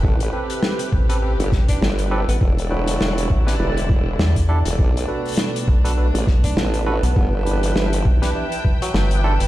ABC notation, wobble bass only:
X:1
M:4/4
L:1/16
Q:"Swing 16ths" 1/4=101
K:Bphr
V:1 name="Wobble bass" clef=bass
A,,,2 z6 z G,,, z2 G,,,3 z | E,,,4 E,,,2 z2 E,,,4 z3 E,,, | B,,,2 z6 z A,,, z2 A,,,3 z | G,,,4 G,,,2 z8 z2 |]